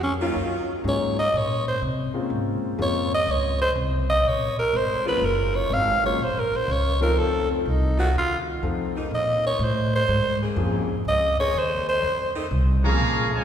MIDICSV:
0, 0, Header, 1, 8, 480
1, 0, Start_track
1, 0, Key_signature, -5, "minor"
1, 0, Tempo, 486224
1, 1318, Time_signature, 4, 2, 24, 8
1, 13269, End_track
2, 0, Start_track
2, 0, Title_t, "Trumpet section"
2, 0, Program_c, 0, 61
2, 12676, Note_on_c, 0, 77, 112
2, 12679, Note_on_c, 0, 73, 109
2, 12680, Note_on_c, 0, 68, 112
2, 12684, Note_on_c, 0, 82, 118
2, 13121, Note_off_c, 0, 77, 0
2, 13123, Note_off_c, 0, 73, 0
2, 13124, Note_off_c, 0, 68, 0
2, 13126, Note_off_c, 0, 82, 0
2, 13176, Note_on_c, 0, 80, 117
2, 13177, Note_on_c, 0, 65, 95
2, 13179, Note_on_c, 0, 73, 96
2, 13180, Note_on_c, 0, 72, 98
2, 13269, Note_off_c, 0, 65, 0
2, 13269, Note_off_c, 0, 72, 0
2, 13269, Note_off_c, 0, 73, 0
2, 13269, Note_off_c, 0, 80, 0
2, 13269, End_track
3, 0, Start_track
3, 0, Title_t, "Alto saxophone"
3, 0, Program_c, 1, 65
3, 32, Note_on_c, 1, 61, 93
3, 130, Note_off_c, 1, 61, 0
3, 872, Note_on_c, 1, 73, 91
3, 1155, Note_off_c, 1, 73, 0
3, 1175, Note_on_c, 1, 75, 113
3, 1354, Note_on_c, 1, 73, 101
3, 1369, Note_off_c, 1, 75, 0
3, 1654, Note_off_c, 1, 73, 0
3, 1659, Note_on_c, 1, 72, 100
3, 1798, Note_off_c, 1, 72, 0
3, 2784, Note_on_c, 1, 73, 104
3, 3070, Note_off_c, 1, 73, 0
3, 3103, Note_on_c, 1, 75, 114
3, 3273, Note_on_c, 1, 73, 100
3, 3287, Note_off_c, 1, 75, 0
3, 3564, Note_off_c, 1, 73, 0
3, 3570, Note_on_c, 1, 72, 110
3, 3662, Note_off_c, 1, 72, 0
3, 4045, Note_on_c, 1, 75, 114
3, 4229, Note_on_c, 1, 73, 101
3, 4244, Note_off_c, 1, 75, 0
3, 4527, Note_off_c, 1, 73, 0
3, 4533, Note_on_c, 1, 70, 106
3, 4706, Note_on_c, 1, 72, 115
3, 4721, Note_off_c, 1, 70, 0
3, 5010, Note_off_c, 1, 72, 0
3, 5016, Note_on_c, 1, 71, 102
3, 5182, Note_on_c, 1, 70, 96
3, 5197, Note_off_c, 1, 71, 0
3, 5485, Note_on_c, 1, 73, 113
3, 5500, Note_off_c, 1, 70, 0
3, 5664, Note_on_c, 1, 77, 116
3, 5679, Note_off_c, 1, 73, 0
3, 5972, Note_off_c, 1, 77, 0
3, 5977, Note_on_c, 1, 73, 101
3, 6159, Note_on_c, 1, 72, 95
3, 6174, Note_off_c, 1, 73, 0
3, 6308, Note_on_c, 1, 70, 94
3, 6323, Note_off_c, 1, 72, 0
3, 6476, Note_on_c, 1, 72, 109
3, 6491, Note_off_c, 1, 70, 0
3, 6633, Note_on_c, 1, 73, 122
3, 6648, Note_off_c, 1, 72, 0
3, 6933, Note_off_c, 1, 73, 0
3, 6939, Note_on_c, 1, 70, 99
3, 7094, Note_on_c, 1, 69, 100
3, 7109, Note_off_c, 1, 70, 0
3, 7407, Note_off_c, 1, 69, 0
3, 7416, Note_on_c, 1, 60, 59
3, 7574, Note_off_c, 1, 60, 0
3, 7585, Note_on_c, 1, 63, 86
3, 7884, Note_off_c, 1, 63, 0
3, 7889, Note_on_c, 1, 66, 107
3, 8033, Note_off_c, 1, 66, 0
3, 8077, Note_on_c, 1, 65, 100
3, 8258, Note_off_c, 1, 65, 0
3, 9029, Note_on_c, 1, 75, 92
3, 9313, Note_off_c, 1, 75, 0
3, 9343, Note_on_c, 1, 73, 109
3, 9515, Note_on_c, 1, 72, 95
3, 9530, Note_off_c, 1, 73, 0
3, 9817, Note_off_c, 1, 72, 0
3, 9827, Note_on_c, 1, 72, 111
3, 10260, Note_off_c, 1, 72, 0
3, 10941, Note_on_c, 1, 75, 111
3, 11228, Note_off_c, 1, 75, 0
3, 11253, Note_on_c, 1, 73, 113
3, 11434, Note_on_c, 1, 72, 100
3, 11449, Note_off_c, 1, 73, 0
3, 11730, Note_off_c, 1, 72, 0
3, 11736, Note_on_c, 1, 72, 106
3, 12173, Note_off_c, 1, 72, 0
3, 13269, End_track
4, 0, Start_track
4, 0, Title_t, "Grand piano"
4, 0, Program_c, 2, 0
4, 199, Note_on_c, 2, 54, 64
4, 204, Note_on_c, 2, 58, 59
4, 209, Note_on_c, 2, 61, 60
4, 212, Note_on_c, 2, 63, 62
4, 217, Note_on_c, 2, 65, 74
4, 342, Note_off_c, 2, 54, 0
4, 344, Note_off_c, 2, 58, 0
4, 347, Note_off_c, 2, 61, 0
4, 348, Note_off_c, 2, 63, 0
4, 351, Note_off_c, 2, 65, 0
4, 834, Note_on_c, 2, 54, 61
4, 837, Note_on_c, 2, 58, 55
4, 841, Note_on_c, 2, 61, 60
4, 845, Note_on_c, 2, 63, 52
4, 849, Note_on_c, 2, 68, 65
4, 1125, Note_off_c, 2, 54, 0
4, 1126, Note_off_c, 2, 58, 0
4, 1129, Note_off_c, 2, 61, 0
4, 1130, Note_off_c, 2, 63, 0
4, 1132, Note_off_c, 2, 68, 0
4, 2109, Note_on_c, 2, 56, 65
4, 2115, Note_on_c, 2, 58, 63
4, 2118, Note_on_c, 2, 60, 60
4, 2123, Note_on_c, 2, 61, 66
4, 2125, Note_on_c, 2, 65, 68
4, 2721, Note_off_c, 2, 56, 0
4, 2724, Note_off_c, 2, 58, 0
4, 2726, Note_off_c, 2, 60, 0
4, 2728, Note_off_c, 2, 61, 0
4, 2730, Note_off_c, 2, 65, 0
4, 2745, Note_on_c, 2, 56, 69
4, 2750, Note_on_c, 2, 58, 63
4, 2758, Note_on_c, 2, 60, 63
4, 2758, Note_on_c, 2, 61, 64
4, 2762, Note_on_c, 2, 65, 74
4, 3041, Note_off_c, 2, 56, 0
4, 3043, Note_off_c, 2, 58, 0
4, 3047, Note_off_c, 2, 60, 0
4, 3047, Note_off_c, 2, 61, 0
4, 3049, Note_off_c, 2, 65, 0
4, 4991, Note_on_c, 2, 54, 62
4, 4997, Note_on_c, 2, 56, 58
4, 5002, Note_on_c, 2, 58, 62
4, 5005, Note_on_c, 2, 61, 55
4, 5010, Note_on_c, 2, 65, 66
4, 5139, Note_off_c, 2, 54, 0
4, 5141, Note_off_c, 2, 56, 0
4, 5144, Note_off_c, 2, 58, 0
4, 5145, Note_off_c, 2, 61, 0
4, 5148, Note_off_c, 2, 65, 0
4, 5959, Note_on_c, 2, 54, 66
4, 5961, Note_on_c, 2, 56, 55
4, 5966, Note_on_c, 2, 58, 61
4, 5971, Note_on_c, 2, 61, 60
4, 5976, Note_on_c, 2, 65, 72
4, 6102, Note_off_c, 2, 54, 0
4, 6104, Note_off_c, 2, 56, 0
4, 6106, Note_off_c, 2, 58, 0
4, 6108, Note_off_c, 2, 61, 0
4, 6111, Note_off_c, 2, 65, 0
4, 6916, Note_on_c, 2, 53, 69
4, 6921, Note_on_c, 2, 60, 67
4, 6922, Note_on_c, 2, 57, 69
4, 6926, Note_on_c, 2, 63, 65
4, 6933, Note_on_c, 2, 65, 80
4, 7525, Note_off_c, 2, 53, 0
4, 7527, Note_off_c, 2, 60, 0
4, 7528, Note_off_c, 2, 57, 0
4, 7530, Note_off_c, 2, 63, 0
4, 7533, Note_off_c, 2, 65, 0
4, 8518, Note_on_c, 2, 53, 63
4, 8525, Note_on_c, 2, 57, 59
4, 8528, Note_on_c, 2, 60, 58
4, 8529, Note_on_c, 2, 63, 59
4, 8536, Note_on_c, 2, 65, 67
4, 8807, Note_off_c, 2, 53, 0
4, 8810, Note_off_c, 2, 57, 0
4, 8812, Note_off_c, 2, 60, 0
4, 8812, Note_off_c, 2, 63, 0
4, 8816, Note_off_c, 2, 65, 0
4, 10432, Note_on_c, 2, 53, 62
4, 10437, Note_on_c, 2, 58, 55
4, 10440, Note_on_c, 2, 60, 60
4, 10446, Note_on_c, 2, 68, 74
4, 10447, Note_on_c, 2, 61, 56
4, 10723, Note_off_c, 2, 53, 0
4, 10726, Note_off_c, 2, 58, 0
4, 10727, Note_off_c, 2, 60, 0
4, 10730, Note_off_c, 2, 61, 0
4, 10730, Note_off_c, 2, 68, 0
4, 12676, Note_on_c, 2, 53, 74
4, 12676, Note_on_c, 2, 58, 59
4, 12683, Note_on_c, 2, 60, 65
4, 12686, Note_on_c, 2, 61, 60
4, 12689, Note_on_c, 2, 68, 73
4, 12818, Note_off_c, 2, 53, 0
4, 12819, Note_off_c, 2, 58, 0
4, 12822, Note_off_c, 2, 60, 0
4, 12824, Note_off_c, 2, 61, 0
4, 12825, Note_off_c, 2, 68, 0
4, 13269, End_track
5, 0, Start_track
5, 0, Title_t, "Saxophone section"
5, 0, Program_c, 3, 65
5, 201, Note_on_c, 3, 51, 110
5, 201, Note_on_c, 3, 65, 126
5, 204, Note_on_c, 3, 54, 104
5, 207, Note_on_c, 3, 61, 106
5, 807, Note_off_c, 3, 51, 0
5, 807, Note_off_c, 3, 65, 0
5, 808, Note_off_c, 3, 54, 0
5, 810, Note_off_c, 3, 61, 0
5, 4995, Note_on_c, 3, 54, 81
5, 4997, Note_on_c, 3, 49, 91
5, 4998, Note_on_c, 3, 58, 85
5, 4998, Note_on_c, 3, 65, 105
5, 5604, Note_off_c, 3, 54, 0
5, 5605, Note_off_c, 3, 49, 0
5, 5606, Note_off_c, 3, 58, 0
5, 5606, Note_off_c, 3, 65, 0
5, 6918, Note_on_c, 3, 65, 98
5, 6920, Note_on_c, 3, 51, 88
5, 6923, Note_on_c, 3, 57, 88
5, 6924, Note_on_c, 3, 60, 88
5, 7526, Note_off_c, 3, 65, 0
5, 7527, Note_off_c, 3, 51, 0
5, 7529, Note_off_c, 3, 57, 0
5, 7529, Note_off_c, 3, 60, 0
5, 7876, Note_on_c, 3, 57, 93
5, 7877, Note_on_c, 3, 65, 106
5, 7878, Note_on_c, 3, 60, 94
5, 7880, Note_on_c, 3, 51, 102
5, 7984, Note_off_c, 3, 57, 0
5, 7985, Note_off_c, 3, 65, 0
5, 7986, Note_off_c, 3, 60, 0
5, 7987, Note_off_c, 3, 51, 0
5, 8842, Note_on_c, 3, 49, 95
5, 8844, Note_on_c, 3, 58, 91
5, 8845, Note_on_c, 3, 60, 80
5, 8846, Note_on_c, 3, 63, 109
5, 9447, Note_off_c, 3, 49, 0
5, 9448, Note_off_c, 3, 58, 0
5, 9449, Note_off_c, 3, 60, 0
5, 9450, Note_off_c, 3, 63, 0
5, 10284, Note_on_c, 3, 58, 91
5, 10285, Note_on_c, 3, 60, 87
5, 10290, Note_on_c, 3, 49, 89
5, 10292, Note_on_c, 3, 68, 103
5, 10888, Note_off_c, 3, 58, 0
5, 10888, Note_off_c, 3, 60, 0
5, 10891, Note_off_c, 3, 49, 0
5, 10892, Note_off_c, 3, 68, 0
5, 11237, Note_on_c, 3, 58, 82
5, 11237, Note_on_c, 3, 68, 103
5, 11239, Note_on_c, 3, 49, 93
5, 11243, Note_on_c, 3, 60, 80
5, 11844, Note_off_c, 3, 58, 0
5, 11844, Note_off_c, 3, 68, 0
5, 11845, Note_off_c, 3, 49, 0
5, 11846, Note_off_c, 3, 60, 0
5, 12192, Note_on_c, 3, 57, 90
5, 12192, Note_on_c, 3, 63, 104
5, 12194, Note_on_c, 3, 51, 97
5, 12195, Note_on_c, 3, 60, 89
5, 12301, Note_off_c, 3, 57, 0
5, 12301, Note_off_c, 3, 63, 0
5, 12302, Note_off_c, 3, 51, 0
5, 12303, Note_off_c, 3, 60, 0
5, 13269, End_track
6, 0, Start_track
6, 0, Title_t, "Trombone section"
6, 0, Program_c, 4, 61
6, 12676, Note_on_c, 4, 49, 103
6, 12676, Note_on_c, 4, 58, 101
6, 12678, Note_on_c, 4, 53, 101
6, 13121, Note_off_c, 4, 58, 0
6, 13122, Note_off_c, 4, 49, 0
6, 13123, Note_off_c, 4, 53, 0
6, 13150, Note_on_c, 4, 49, 92
6, 13155, Note_on_c, 4, 53, 91
6, 13155, Note_on_c, 4, 56, 87
6, 13269, Note_off_c, 4, 49, 0
6, 13269, Note_off_c, 4, 53, 0
6, 13269, Note_off_c, 4, 56, 0
6, 13269, End_track
7, 0, Start_track
7, 0, Title_t, "Upright bass"
7, 0, Program_c, 5, 32
7, 0, Note_on_c, 5, 41, 104
7, 343, Note_off_c, 5, 41, 0
7, 353, Note_on_c, 5, 42, 96
7, 821, Note_off_c, 5, 42, 0
7, 830, Note_on_c, 5, 44, 98
7, 1300, Note_off_c, 5, 44, 0
7, 1316, Note_on_c, 5, 46, 83
7, 1783, Note_off_c, 5, 46, 0
7, 1795, Note_on_c, 5, 48, 102
7, 2262, Note_off_c, 5, 48, 0
7, 2269, Note_on_c, 5, 44, 88
7, 2739, Note_off_c, 5, 44, 0
7, 2749, Note_on_c, 5, 41, 101
7, 3219, Note_off_c, 5, 41, 0
7, 3225, Note_on_c, 5, 37, 91
7, 3697, Note_off_c, 5, 37, 0
7, 3708, Note_on_c, 5, 36, 99
7, 4179, Note_off_c, 5, 36, 0
7, 4189, Note_on_c, 5, 34, 85
7, 4492, Note_off_c, 5, 34, 0
7, 4668, Note_on_c, 5, 32, 93
7, 5139, Note_off_c, 5, 32, 0
7, 5146, Note_on_c, 5, 30, 94
7, 5618, Note_off_c, 5, 30, 0
7, 5628, Note_on_c, 5, 32, 107
7, 6099, Note_off_c, 5, 32, 0
7, 6108, Note_on_c, 5, 34, 88
7, 6579, Note_off_c, 5, 34, 0
7, 6593, Note_on_c, 5, 37, 98
7, 7061, Note_off_c, 5, 37, 0
7, 7076, Note_on_c, 5, 41, 91
7, 7543, Note_off_c, 5, 41, 0
7, 7557, Note_on_c, 5, 36, 99
7, 8023, Note_off_c, 5, 36, 0
7, 8036, Note_on_c, 5, 39, 90
7, 8503, Note_off_c, 5, 39, 0
7, 8517, Note_on_c, 5, 41, 99
7, 8983, Note_off_c, 5, 41, 0
7, 8992, Note_on_c, 5, 46, 93
7, 9460, Note_off_c, 5, 46, 0
7, 9468, Note_on_c, 5, 45, 110
7, 9938, Note_off_c, 5, 45, 0
7, 9955, Note_on_c, 5, 44, 97
7, 10421, Note_off_c, 5, 44, 0
7, 10427, Note_on_c, 5, 41, 109
7, 10897, Note_off_c, 5, 41, 0
7, 10908, Note_on_c, 5, 37, 95
7, 11377, Note_off_c, 5, 37, 0
7, 11388, Note_on_c, 5, 39, 110
7, 11857, Note_off_c, 5, 39, 0
7, 11873, Note_on_c, 5, 41, 92
7, 12339, Note_off_c, 5, 41, 0
7, 12348, Note_on_c, 5, 36, 108
7, 12816, Note_off_c, 5, 36, 0
7, 12833, Note_on_c, 5, 34, 94
7, 13132, Note_off_c, 5, 34, 0
7, 13269, End_track
8, 0, Start_track
8, 0, Title_t, "Muted upright bass strokes"
8, 4516, Note_on_c, 9, 29, 42
8, 4615, Note_off_c, 9, 29, 0
8, 13155, Note_on_c, 9, 29, 44
8, 13253, Note_off_c, 9, 29, 0
8, 13269, End_track
0, 0, End_of_file